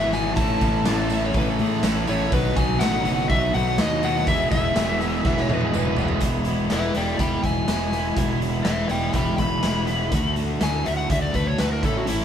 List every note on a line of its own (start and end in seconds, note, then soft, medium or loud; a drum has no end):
0.00 0.36 G#1 medium
0.00 0.12 E2 medium
0.00 0.13 B2 medium
0.00 0.11 E3 loud
0.00 0.13 E3 loud
0.00 0.12 F#3 medium
0.00 0.14 B3 loud
0.00 0.35 B3 medium
0.00 0.13 E4 loud
0.00 0.35 E4 medium
0.00 0.14 F#4 loud
0.00 0.36 F#4 medium
0.00 0.16 E5 loud
0.00 0.36 E5 medium
0.13 0.37 E2 medium
0.13 0.37 B2 medium
0.13 0.37 E3 medium
0.13 0.37 F#3 medium
0.13 0.39 B3 loud
0.13 0.37 E4 medium
0.13 0.38 F#4 loud
0.13 0.36 G#5 medium
0.13 open hi-hat medium
0.13 tambourine medium
0.36 0.61 A1 loud
0.36 0.61 A2 loud
0.36 0.61 E3 loud
0.36 0.61 A3 loud
0.36 2.30 B3 medium
0.36 0.62 C#4 loud
0.36 2.30 E4 medium
0.36 0.62 E4 loud
0.36 2.31 A4 medium
0.36 2.30 C#5 medium
0.36 1.31 A5 medium
0.36 kick loud
0.36 open hi-hat medium
0.36 tambourine medium
0.40 0.62 A4 loud
0.61 0.85 A1 loud
0.61 0.85 A2 medium
0.61 0.85 E3 medium
0.61 0.86 A3 medium
0.61 0.86 C#4 medium
0.61 0.86 E4 loud
0.61 0.87 A4 medium
0.61 kick medium
0.61 open hi-hat medium
0.61 tambourine medium
0.85 1.33 A1 medium
0.85 1.11 A2 loud
0.85 1.11 E3 medium
0.85 1.11 A3 loud
0.85 1.12 C#4 loud
0.85 1.10 E4 loud
0.85 1.12 A4 loud
0.85 snare loud
0.85 open hi-hat medium
0.85 tambourine loud
1.09 1.35 A2 medium
1.09 1.35 E3 medium
1.09 1.36 A3 medium
1.09 1.36 C#4 medium
1.09 1.35 E4 medium
1.09 1.36 A4 loud
1.09 open hi-hat medium
1.09 tambourine medium
1.14 1.24 E5 loud
1.25 1.36 C#5 medium
1.34 1.58 A1 medium
1.34 1.60 A2 loud
1.34 1.59 E3 loud
1.34 1.60 A3 medium
1.34 1.61 C#4 loud
1.34 1.60 E4 loud
1.34 1.61 A4 loud
1.34 1.49 B4 medium
1.34 kick loud
1.34 open hi-hat medium
1.49 1.61 A4 medium
1.59 1.83 A2 medium
1.59 1.84 A2 medium
1.59 1.84 E3 medium
1.59 1.85 A3 medium
1.59 1.84 C#4 medium
1.59 1.83 E4 loud
1.59 1.84 G#4 medium
1.59 1.85 A4 loud
1.59 open hi-hat medium
1.83 2.07 A1 loud
1.83 2.08 A2 loud
1.83 2.08 E3 loud
1.83 2.08 A3 medium
1.83 2.09 C#4 medium
1.83 2.08 E4 medium
1.83 2.08 E4 loud
1.83 2.09 A4 loud
1.83 snare loud
1.83 open hi-hat medium
1.83 tambourine loud
2.07 2.31 A1 medium
2.07 2.32 A2 medium
2.07 2.32 E3 loud
2.07 2.32 A3 medium
2.07 2.32 C#4 loud
2.07 2.32 E4 medium
2.07 2.32 A4 loud
2.07 2.32 C#5 medium
2.07 open hi-hat medium
2.07 tambourine medium
2.32 2.56 B1 medium
2.32 2.56 B2 loud
2.32 2.55 D#3 loud
2.32 2.57 F#3 loud
2.32 4.26 B3 medium
2.32 2.58 B3 loud
2.32 4.25 D#4 medium
2.32 2.58 D#4 loud
2.32 4.25 F#4 medium
2.32 2.58 F#4 loud
2.32 2.58 B4 loud
2.32 4.25 D#5 medium
2.32 kick loud
2.32 open hi-hat medium
2.32 tambourine medium
2.56 2.80 B1 medium
2.56 2.82 B2 medium
2.56 2.80 D#3 medium
2.56 2.82 F#3 medium
2.56 2.83 B3 medium
2.56 2.82 D#4 medium
2.56 2.82 F#4 medium
2.56 2.82 G#5 loud
2.56 kick loud
2.56 open hi-hat medium
2.56 tambourine medium
2.79 3.04 A1 loud
2.79 3.06 B2 loud
2.79 3.04 D#3 loud
2.79 3.07 F#3 loud
2.79 3.07 B3 loud
2.79 3.26 F#5 loud
2.79 snare loud
2.79 open hi-hat medium
2.79 tambourine loud
2.84 3.07 D#4 loud
2.84 3.07 F#4 loud
3.05 3.29 F#1 medium
3.05 3.30 B2 loud
3.05 3.27 D#3 medium
3.05 3.31 F#3 medium
3.05 3.32 B3 medium
3.05 3.31 D#4 medium
3.05 3.31 F#4 medium
3.05 open hi-hat medium
3.05 tambourine medium
3.29 3.53 B1 medium
3.29 3.54 B2 medium
3.29 3.52 D#3 loud
3.29 3.55 F#3 medium
3.29 3.56 B3 medium
3.29 3.55 D#4 loud
3.29 3.55 F#4 loud
3.29 3.55 E5 loud
3.29 kick loud
3.29 open hi-hat medium
3.54 3.77 B1 loud
3.54 3.79 B2 medium
3.54 3.78 D#3 medium
3.54 3.79 F#3 medium
3.54 3.80 B3 loud
3.54 3.80 D#4 loud
3.54 3.80 F#4 medium
3.54 3.79 F#5 loud
3.54 open hi-hat medium
3.78 4.25 D#2 loud
3.78 4.03 B2 medium
3.78 4.02 D#3 medium
3.78 4.04 F#3 medium
3.78 4.05 B3 medium
3.78 4.04 D#4 loud
3.78 4.05 F#4 loud
3.78 4.05 D#5 medium
3.78 snare loud
3.78 open hi-hat medium
3.78 tambourine medium
4.03 4.27 B2 medium
4.03 4.26 D#3 medium
4.03 4.27 F#3 medium
4.03 4.29 B3 loud
4.03 4.27 D#4 loud
4.03 4.27 F#4 loud
4.03 4.27 F#5 medium
4.03 open hi-hat medium
4.03 tambourine medium
4.27 4.50 E1 loud
4.27 4.51 E2 loud
4.27 4.51 B2 loud
4.27 4.52 E3 loud
4.27 4.52 G#3 loud
4.27 6.21 B3 medium
4.27 4.52 B3 loud
4.27 4.51 E4 loud
4.27 6.21 E4 medium
4.27 6.21 G#4 medium
4.27 4.52 G#4 loud
4.27 6.20 E5 medium
4.27 4.51 E5 loud
4.27 kick loud
4.27 open hi-hat medium
4.27 tambourine medium
4.51 4.75 E1 medium
4.51 4.75 E2 medium
4.51 4.76 B2 medium
4.51 4.76 E3 medium
4.51 4.77 G#3 medium
4.51 4.77 B3 medium
4.51 4.74 E4 loud
4.51 4.77 G#4 medium
4.51 5.44 E5 medium
4.51 kick loud
4.51 open hi-hat medium
4.51 tambourine medium
4.75 5.22 E1 medium
4.75 4.99 E2 loud
4.75 5.00 B2 loud
4.75 5.00 E3 loud
4.75 5.00 G#3 loud
4.75 5.01 B3 loud
4.75 4.99 E4 medium
4.75 5.01 G#4 loud
4.75 snare loud
4.75 open hi-hat medium
4.75 tambourine loud
5.00 5.25 E2 medium
5.00 5.25 B2 medium
5.00 5.25 E3 medium
5.00 5.26 G#3 loud
5.00 5.26 B3 medium
5.00 5.22 E4 loud
5.00 5.26 G#4 medium
5.00 snare soft
5.00 open hi-hat medium
5.00 tambourine medium
5.24 5.48 E1 medium
5.24 5.47 E2 medium
5.24 5.48 B2 medium
5.24 5.48 E3 medium
5.24 5.49 G#3 medium
5.24 5.49 B3 medium
5.24 5.48 E4 loud
5.24 5.49 G#4 loud
5.24 5.38 E5 medium
5.24 kick loud
5.24 snare medium
5.24 tambourine soft
5.37 5.53 C#5 medium
5.37 snare medium
5.44 5.94 D#5 medium
5.49 5.72 E2 medium
5.49 5.73 B2 medium
5.49 5.73 E3 medium
5.49 5.73 G#3 medium
5.49 5.74 B3 loud
5.49 5.72 E4 medium
5.49 5.74 G#4 medium
5.49 5.63 B4 medium
5.49 high tom medium
5.49 tambourine soft
5.61 5.75 G#4 medium
5.61 high tom medium
5.74 5.97 E1 medium
5.74 5.97 E2 medium
5.74 5.97 B2 medium
5.74 5.98 E3 loud
5.74 5.98 G#3 medium
5.74 5.98 B3 loud
5.74 5.97 E4 loud
5.74 5.99 G#4 loud
5.74 5.98 B4 medium
5.74 mid tom medium
5.74 tambourine medium
5.85 mid tom medium
5.96 6.21 E1 medium
5.96 6.21 E2 medium
5.96 6.21 B2 medium
5.96 6.21 E3 medium
5.96 6.21 G#3 medium
5.96 6.22 B3 medium
5.96 6.21 E4 medium
5.96 6.22 G#4 loud
5.96 6.23 G#4 loud
5.96 floor tom loud
5.96 tambourine medium
6.08 floor tom medium
6.20 6.68 E1 medium
6.20 6.97 E2 medium
6.20 6.71 B2 medium
6.20 6.48 E3 loud
6.20 6.48 G#3 medium
6.20 6.47 B3 medium
6.20 6.46 E4 loud
6.20 kick loud
6.20 closed hi-hat loud
6.45 6.70 E3 medium
6.45 6.71 G#3 medium
6.45 6.71 B3 medium
6.45 6.72 E4 medium
6.45 closed hi-hat medium
6.70 6.95 E1 medium
6.70 6.95 E3 medium
6.70 6.95 G#3 medium
6.70 6.94 B3 medium
6.70 6.94 E4 medium
6.70 6.96 B4 medium
6.70 6.96 E5 medium
6.70 snare medium
6.70 closed hi-hat medium
6.94 7.19 E1 medium
6.94 7.45 E2 medium
6.94 7.45 B2 medium
6.94 7.19 E3 medium
6.94 7.19 G#3 medium
6.94 7.20 B3 medium
6.94 7.21 E4 medium
6.94 7.19 D5 medium
6.94 7.19 G5 medium
6.94 closed hi-hat medium
7.19 7.43 E1 medium
7.19 7.45 E3 medium
7.19 7.44 G#3 medium
7.19 7.44 B3 medium
7.19 7.44 E4 medium
7.19 7.43 G5 medium
7.19 7.44 B5 medium
7.19 kick loud
7.19 closed hi-hat medium
7.43 7.67 E1 medium
7.43 7.94 E2 medium
7.43 7.94 B2 medium
7.43 7.67 E3 medium
7.43 7.68 G#3 medium
7.43 7.68 B3 medium
7.43 7.69 E4 medium
7.43 8.40 G#5 loud
7.43 kick medium
7.43 closed hi-hat medium
7.68 8.15 E1 medium
7.68 7.94 E3 medium
7.68 7.94 G#3 medium
7.68 7.93 B3 medium
7.68 7.92 E4 medium
7.68 snare loud
7.68 closed hi-hat medium
7.93 8.16 E3 medium
7.93 8.17 G#3 medium
7.93 8.17 B3 medium
7.93 8.18 E4 medium
7.93 closed hi-hat medium
8.17 8.63 E1 medium
8.17 8.66 E2 medium
8.17 8.66 B2 loud
8.17 8.43 E3 medium
8.17 8.42 G#3 loud
8.17 8.42 B3 loud
8.17 8.41 E4 loud
8.17 kick loud
8.17 closed hi-hat loud
8.42 8.66 E3 medium
8.42 8.67 G#3 medium
8.42 8.68 B3 medium
8.42 8.68 E4 medium
8.42 closed hi-hat medium
8.65 8.89 E1 medium
8.65 8.91 E3 medium
8.65 8.91 G#3 medium
8.65 8.90 B4 medium
8.65 8.89 E5 medium
8.65 snare loud
8.65 closed hi-hat medium
8.69 8.90 B3 medium
8.69 8.89 E4 medium
8.89 9.13 E1 medium
8.89 9.40 E2 medium
8.89 9.40 B2 medium
8.89 9.14 E3 medium
8.89 9.15 G#3 medium
8.89 9.16 B3 medium
8.89 9.16 E4 medium
8.89 9.13 D5 medium
8.89 9.14 G5 medium
8.89 closed hi-hat medium
9.13 9.37 E1 medium
9.13 9.41 E3 medium
9.13 9.41 G#3 medium
9.13 9.40 B3 medium
9.13 9.39 E4 medium
9.13 9.38 G5 medium
9.13 9.38 B5 medium
9.13 kick loud
9.13 closed hi-hat medium
9.38 9.62 E1 medium
9.38 9.64 G#3 medium
9.38 9.65 B3 medium
9.38 9.66 E4 medium
9.38 10.34 B5 loud
9.38 kick medium
9.38 closed hi-hat medium
9.42 9.90 E2 medium
9.42 9.90 B2 medium
9.42 9.63 E3 medium
9.63 10.10 E1 medium
9.63 9.89 E3 medium
9.63 9.89 G#3 medium
9.63 9.88 B3 medium
9.63 snare loud
9.63 closed hi-hat medium
9.67 9.87 E4 medium
9.87 10.12 E3 medium
9.87 10.12 G#3 medium
9.87 10.12 B3 medium
9.87 10.11 E4 medium
9.87 closed hi-hat medium
10.12 10.58 D2 medium
10.12 10.59 D3 medium
10.12 10.39 A3 loud
10.12 10.37 D4 loud
10.12 10.36 F#4 loud
10.12 kick loud
10.12 closed hi-hat loud
10.36 10.61 A3 medium
10.36 10.61 D4 medium
10.36 10.61 F#4 medium
10.36 closed hi-hat medium
10.60 10.84 D2 medium
10.60 10.86 D3 medium
10.60 10.87 A3 medium
10.60 10.85 D4 medium
10.60 10.84 F#4 medium
10.60 10.86 G#5 medium
10.60 snare loud
10.60 closed hi-hat medium
10.85 11.09 D2 medium
10.85 11.09 D3 medium
10.85 11.09 A3 medium
10.85 11.11 D4 medium
10.85 11.10 F#4 medium
10.85 10.96 E5 medium
10.85 closed hi-hat medium
10.97 11.09 F#5 medium
11.10 11.33 D2 medium
11.10 11.35 D3 medium
11.10 11.34 A3 medium
11.10 11.34 D4 medium
11.10 11.33 F#4 medium
11.10 11.22 E5 medium
11.10 kick loud
11.10 closed hi-hat medium
11.22 11.34 D5 medium
11.34 11.57 D2 medium
11.34 11.57 D3 medium
11.34 11.58 A3 medium
11.34 11.59 D4 medium
11.34 11.59 F#4 medium
11.34 11.47 B4 medium
11.34 kick medium
11.34 closed hi-hat medium
11.47 11.58 C#5 medium
11.58 11.82 D2 medium
11.58 11.81 D3 medium
11.58 11.82 A3 medium
11.58 11.82 D4 medium
11.58 11.82 F#4 medium
11.58 11.71 B4 medium
11.58 snare loud
11.58 closed hi-hat medium
11.73 11.84 A#4 medium
11.83 12.06 A1 loud
11.83 12.04 A2 medium
11.83 12.06 E3 medium
11.83 12.06 A3 medium
11.83 12.07 C#4 medium
11.83 12.07 E4 medium
11.83 11.96 A4 medium
11.83 kick loud
11.83 closed hi-hat medium
11.97 12.08 F#4 medium
12.06 12.25 A1 medium
12.06 12.25 A2 loud
12.06 12.25 E3 medium
12.06 12.25 A3 loud
12.06 12.25 C#4 loud
12.06 12.25 E4 loud
12.06 12.25 E4 medium
12.06 closed hi-hat loud
12.20 snare soft